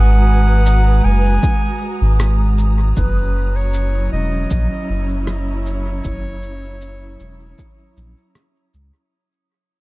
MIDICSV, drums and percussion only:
0, 0, Header, 1, 2, 480
1, 0, Start_track
1, 0, Tempo, 769231
1, 1853, Time_signature, 4, 2, 24, 8
1, 6120, End_track
2, 0, Start_track
2, 0, Title_t, "Drums"
2, 411, Note_on_c, 9, 82, 50
2, 474, Note_off_c, 9, 82, 0
2, 891, Note_on_c, 9, 82, 53
2, 893, Note_on_c, 9, 36, 105
2, 953, Note_off_c, 9, 82, 0
2, 956, Note_off_c, 9, 36, 0
2, 1372, Note_on_c, 9, 37, 88
2, 1372, Note_on_c, 9, 82, 51
2, 1434, Note_off_c, 9, 37, 0
2, 1434, Note_off_c, 9, 82, 0
2, 1610, Note_on_c, 9, 82, 27
2, 1673, Note_off_c, 9, 82, 0
2, 1850, Note_on_c, 9, 82, 55
2, 1854, Note_on_c, 9, 36, 97
2, 1912, Note_off_c, 9, 82, 0
2, 1916, Note_off_c, 9, 36, 0
2, 2331, Note_on_c, 9, 82, 52
2, 2393, Note_off_c, 9, 82, 0
2, 2810, Note_on_c, 9, 82, 55
2, 2814, Note_on_c, 9, 36, 102
2, 2872, Note_off_c, 9, 82, 0
2, 2877, Note_off_c, 9, 36, 0
2, 3290, Note_on_c, 9, 37, 88
2, 3290, Note_on_c, 9, 82, 53
2, 3353, Note_off_c, 9, 37, 0
2, 3353, Note_off_c, 9, 82, 0
2, 3531, Note_on_c, 9, 82, 29
2, 3593, Note_off_c, 9, 82, 0
2, 3770, Note_on_c, 9, 82, 55
2, 3774, Note_on_c, 9, 36, 102
2, 3832, Note_off_c, 9, 82, 0
2, 3837, Note_off_c, 9, 36, 0
2, 4009, Note_on_c, 9, 82, 30
2, 4072, Note_off_c, 9, 82, 0
2, 4251, Note_on_c, 9, 82, 53
2, 4313, Note_off_c, 9, 82, 0
2, 4490, Note_on_c, 9, 82, 29
2, 4553, Note_off_c, 9, 82, 0
2, 4731, Note_on_c, 9, 82, 55
2, 4734, Note_on_c, 9, 36, 106
2, 4794, Note_off_c, 9, 82, 0
2, 4796, Note_off_c, 9, 36, 0
2, 4973, Note_on_c, 9, 82, 30
2, 5035, Note_off_c, 9, 82, 0
2, 5212, Note_on_c, 9, 37, 95
2, 5212, Note_on_c, 9, 82, 54
2, 5274, Note_off_c, 9, 37, 0
2, 5274, Note_off_c, 9, 82, 0
2, 5451, Note_on_c, 9, 82, 31
2, 5514, Note_off_c, 9, 82, 0
2, 6120, End_track
0, 0, End_of_file